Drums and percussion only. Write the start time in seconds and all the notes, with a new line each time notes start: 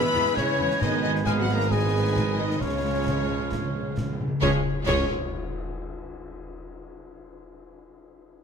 0.14 snare
0.26 snare
0.37 concert bass drum, snare
0.71 snare
0.82 concert bass drum, snare, crash
1.15 snare
1.26 concert bass drum, snare
1.49 snare
1.60 snare
1.71 concert bass drum, snare
2.16 concert bass drum, snare
2.51 snare
2.61 concert bass drum, snare
3.07 concert bass drum, snare
3.52 concert bass drum, snare
3.98 concert bass drum, snare
4.42 concert bass drum, snare, tam-tam
4.87 concert bass drum, snare, crash, tam-tam